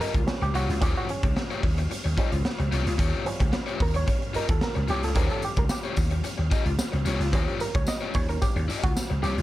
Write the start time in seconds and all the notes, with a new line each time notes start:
Already playing: F3 G3 C#4 F5
0.00 F4 G4 A#4 D#5, closed hi-hat
0.14 C#2, muted overdriven electric guitar stroke, kick, closed hi-hat
0.27 F3 G3 C#4, snare
0.42 C#2 G4, muted overdriven electric guitar stroke, closed hi-hat
0.54 C2 F4 F#4 G4 C#5, closed hi-hat
0.69 C#2, muted overdriven electric guitar stroke, snare, closed hi-hat
0.81 D#2 F3 G3 C#4 F4 G4 C#5, kick, closed hi-hat
0.96 F#4, closed hi-hat
1.09 C#4, closed hi-hat
1.23 C#2, muted overdriven electric guitar stroke, kick, closed hi-hat
1.36 muted overdriven electric guitar stroke, snare
1.51 F4 G4 C#5, closed hi-hat
1.63 D#2, muted overdriven electric guitar stroke, kick, open hi-hat
1.78 muted overdriven electric guitar stroke, closed hi-hat
1.90 muted overdriven electric guitar stroke, closed hi-hat
2.04 D#2, muted overdriven electric guitar stroke, closed hi-hat
2.17 F3 G3 C#4 F4 G4 D#5, kick, closed hi-hat
2.32 C#2, muted overdriven electric guitar stroke, closed hi-hat
2.45 snare
2.59 C#2, muted overdriven electric guitar stroke, closed hi-hat
2.72 C2 F4 G4 C#5, closed hi-hat
2.86 C#2, muted overdriven electric guitar stroke, snare, closed hi-hat
2.98 D#2 F4 G4 C#5, kick, closed hi-hat
3.26 F3 G3 C#4, closed hi-hat
3.40 C#2, muted overdriven electric guitar stroke, kick, closed hi-hat
3.52 muted overdriven electric guitar stroke, snare
3.66 F4 G4 C#5, closed hi-hat
3.79 D#2 A#4, muted overdriven electric guitar stroke, kick, open hi-hat
3.94 C#5, muted overdriven electric guitar stroke, closed hi-hat
4.07 muted overdriven electric guitar stroke, kick, closed hi-hat
4.22 closed hi-hat
4.34 F4 G4 A#4 D#5, muted slap bass stroke, closed hi-hat
4.48 D#2 A4, muted overdriven electric guitar stroke, kick, closed hi-hat
4.61 A#4, snare
4.75 C#2, muted overdriven electric guitar stroke, closed hi-hat
4.88 C2 F4 G4 C#5, closed hi-hat
5.03 C#2 A4, muted overdriven electric guitar stroke, snare, closed hi-hat
5.15 D#2 F3 G3 C#4 E4 F#4 A#4 C#5, kick, closed hi-hat
5.26 F4 G4, closed hi-hat
5.32 A4
5.42 G4, closed hi-hat, tambourine
5.56 C#2 A#4, muted overdriven electric guitar stroke, kick, closed hi-hat
5.69 G4, muted overdriven electric guitar stroke, snare, tambourine
5.84 F4 G4 C#5, closed hi-hat
5.97 D#2, muted overdriven electric guitar stroke, kick, open hi-hat, tambourine
6.11 muted overdriven electric guitar stroke, closed hi-hat
6.24 muted overdriven electric guitar stroke, closed hi-hat, tambourine
6.38 D#2, muted overdriven electric guitar stroke
6.51 F4 G4 D#5, kick, closed hi-hat, tambourine
6.66 C#2, muted overdriven electric guitar stroke, closed hi-hat
6.79 snare, tambourine
6.92 C#2, muted overdriven electric guitar stroke, closed hi-hat
7.05 C2 F4 G4 C#5, closed hi-hat, tambourine
7.20 C#2, muted overdriven electric guitar stroke, snare, closed hi-hat
7.33 D#2 F3 G3 C#4 E4 G4 C#5, kick, closed hi-hat
7.44 F4
7.48 closed hi-hat
7.60 A#4, closed hi-hat, tambourine
7.75 C#2 C#5, muted overdriven electric guitar stroke, kick, closed hi-hat
7.87 D#5, muted overdriven electric guitar stroke, snare, tambourine
8.01 F4 G4 C#5, closed hi-hat
8.14 D#2 F3 G3 C#4 C#5, muted overdriven electric guitar stroke, kick, open hi-hat, tambourine
8.29 A#4, muted overdriven electric guitar stroke, closed hi-hat
8.42 G4, muted overdriven electric guitar stroke, kick, closed hi-hat, tambourine
8.56 D#2, muted overdriven electric guitar stroke, closed hi-hat
8.68 F4 G4 D#5, closed hi-hat, tambourine
8.83 C#2 F#4, muted overdriven electric guitar stroke, kick, closed hi-hat
8.97 snare, tambourine
9.10 C#2, muted overdriven electric guitar stroke, closed hi-hat
9.22 C2 F4 G4 C#5, closed hi-hat, tambourine
9.37 C#2, muted overdriven electric guitar stroke, snare, closed hi-hat